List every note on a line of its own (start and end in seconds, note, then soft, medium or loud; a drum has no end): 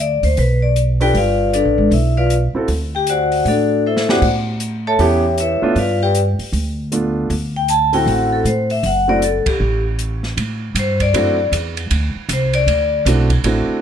0.00 0.19 D2 medium
0.00 0.23 D5 medium
0.23 0.36 D2 medium
0.23 0.38 C5 medium
0.23 open hi-hat soft
0.37 1.11 B1 medium
0.37 0.62 B4 medium
0.37 open hi-hat soft
0.62 0.71 D5 medium
0.76 closed hi-hat soft
1.00 1.13 D4 soft
1.00 1.13 F4 soft
1.00 1.15 G4 medium
1.00 1.13 A4 soft
1.00 1.13 B4 medium
1.00 1.15 B4 medium
1.00 1.15 D5 medium
1.00 1.15 G5 medium
1.00 open hi-hat soft
1.14 1.62 G1 medium
1.14 1.52 F4 medium
1.14 1.52 F5 medium
1.14 open hi-hat soft
1.18 1.52 B4 medium
1.18 1.52 D5 medium
1.53 1.89 D4 medium
1.53 1.89 A4 medium
1.53 1.89 B4 medium
1.53 1.89 D5 medium
1.53 closed hi-hat soft
1.65 1.77 A1 medium
1.78 1.90 G#1 medium
1.91 2.50 B1 medium
1.91 2.16 E4 medium
1.91 2.16 E5 medium
1.91 open hi-hat soft
2.17 2.30 F4 medium
2.17 2.30 B4 medium
2.17 2.30 D5 medium
2.17 2.30 F5 medium
2.30 closed hi-hat soft
2.54 2.67 C4 medium
2.54 2.67 E4 soft
2.54 2.68 F#4 soft
2.54 2.68 A4 medium
2.54 muted upright bass stroke soft
2.68 3.41 D2 medium
2.68 open hi-hat soft
2.95 3.08 G4 medium
2.95 3.07 G5 medium
3.07 3.44 F#4 medium
3.07 3.44 C5 medium
3.07 3.44 D5 medium
3.07 3.44 F#5 medium
3.07 closed hi-hat soft
3.32 open hi-hat soft
3.45 4.18 A2 medium
3.45 3.83 D4 soft
3.45 3.83 F#4 medium
3.45 3.83 A4 medium
3.45 3.82 D5 medium
3.45 open hi-hat soft
3.86 4.09 E4 medium
3.86 4.09 A4 medium
3.86 4.09 C5 medium
3.86 4.09 E5 medium
3.97 snare medium
4.08 4.21 B3 medium
4.08 4.21 C#4 medium
4.08 4.21 E4 medium
4.08 4.23 F#4 medium
4.08 4.22 G4 medium
4.08 4.23 C5 medium
4.08 4.23 D5 medium
4.08 4.23 F#5 medium
4.08 snare medium
4.22 4.95 A2 medium
4.22 kick medium
4.22 crash medium
4.60 closed hi-hat soft
4.87 5.00 A4 medium
4.87 5.00 C#5 medium
4.87 5.00 E5 medium
4.87 5.00 A5 medium
4.99 5.58 E2 medium
4.99 5.21 B3 medium
4.99 5.21 C#4 medium
4.99 5.22 E4 medium
4.99 5.21 G4 medium
4.99 5.36 G4 medium
4.99 5.36 C#5 medium
4.99 5.36 E5 medium
4.99 5.36 G5 medium
4.99 open hi-hat soft
5.38 5.75 E4 medium
5.38 5.75 B4 medium
5.38 5.75 C#5 medium
5.38 5.75 E5 medium
5.38 closed hi-hat soft
5.62 5.75 A3 medium
5.62 5.75 B3 medium
5.62 5.75 D4 medium
5.62 5.75 F4 medium
5.62 muted upright bass stroke soft
5.75 6.35 G2 medium
5.75 6.01 F4 medium
5.75 6.01 B4 medium
5.75 6.01 D5 medium
5.75 6.01 F5 medium
5.75 open hi-hat soft
6.03 6.10 G4 medium
6.03 6.11 B4 medium
6.03 6.11 D5 medium
6.03 6.10 G5 medium
6.15 closed hi-hat medium
6.39 muted upright bass stroke soft
6.39 open hi-hat soft
6.52 7.26 D2 medium
6.52 open hi-hat soft
6.92 7.30 A3 medium
6.92 7.30 B3 soft
6.92 7.30 D4 soft
6.92 7.31 F4 medium
6.92 closed hi-hat soft
7.30 8.03 D2 medium
7.30 open hi-hat soft
7.56 7.69 G5 medium
7.68 7.93 A5 loud
7.68 closed hi-hat soft
7.93 8.42 A3 medium
7.93 8.43 C4 medium
7.93 8.43 E4 medium
7.93 8.43 F#4 medium
7.93 8.07 G5 medium
7.93 open hi-hat soft
8.06 8.42 A1 medium
8.06 8.31 F#5 medium
8.06 open hi-hat soft
8.33 8.46 A4 medium
8.45 8.81 A2 medium
8.45 8.70 C5 medium
8.45 closed hi-hat soft
8.70 8.84 E5 medium
8.70 open hi-hat soft
8.83 9.42 F#1 medium
8.83 9.08 F#5 medium
8.83 open hi-hat soft
9.08 9.21 A3 medium
9.08 9.21 C4 medium
9.08 9.21 E4 medium
9.08 9.21 F#4 medium
9.08 9.22 D5 medium
9.22 9.47 A4 medium
9.22 closed hi-hat medium
9.46 9.83 G4 medium
9.46 muted upright bass stroke soft
9.46 kick medium
9.46 ride medium
9.60 10.33 A1 medium
9.99 closed hi-hat soft
10.23 snare soft
10.37 10.74 A2 medium
10.37 ride medium
10.75 11.12 G2 medium
10.75 hi-hat pedal soft
10.75 ride medium
10.79 11.01 C5 medium
11.00 11.50 D5 medium
11.00 kick soft
11.00 ride soft
11.13 11.51 F#2 medium
11.13 11.36 A3 medium
11.13 11.36 C4 medium
11.13 11.36 D4 medium
11.13 11.36 E4 medium
11.13 11.37 F#4 medium
11.13 ride medium
11.52 11.89 E2 medium
11.52 hi-hat pedal soft
11.52 ride medium
11.77 ride soft
11.91 12.13 D2 medium
11.91 ride medium
12.15 muted upright bass stroke soft
12.29 12.66 C2 medium
12.29 hi-hat pedal medium
12.29 ride medium
12.33 12.55 C5 medium
12.53 13.03 D5 medium
12.53 ride soft
12.67 13.04 D2 medium
12.67 ride medium
13.05 13.43 B1 medium
13.05 13.28 A3 medium
13.05 13.28 C4 soft
13.05 13.28 D4 soft
13.05 13.28 E4 soft
13.05 13.28 F#4 medium
13.05 hi-hat pedal medium
13.05 ride medium
13.30 kick medium
13.30 ride soft
13.44 13.67 A1 medium
13.44 13.81 A3 medium
13.44 13.81 C4 soft
13.44 13.81 D4 soft
13.44 13.81 E4 soft
13.44 13.81 F#4 medium
13.44 ride medium
13.68 muted upright bass stroke soft